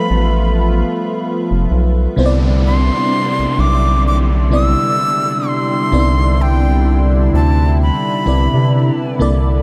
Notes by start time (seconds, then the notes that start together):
Already playing: F3 G3 A3 B3 F4 A4 B4 E5 B5
0.11 A1
1.51 F1
1.71 B1
2.16 C2 C3 D3 G3 B3 C4 D4 E4 C5, downlifter
2.26 D5
2.67 C6
3.39 B1
3.58 B1 D6
4.07 D6
4.50 C3 B3 C4 E4 D5
4.54 E6
5.48 C6
5.91 C2 C3 B3 C4 D#4 D5
5.99 E4
6.42 G5
7.34 D2 A5
7.83 B5
8.26 C2 C3 C4 E4 B4 D5
8.54 C3
9.19 C2 C3 G3 A#3 E4 A4 D5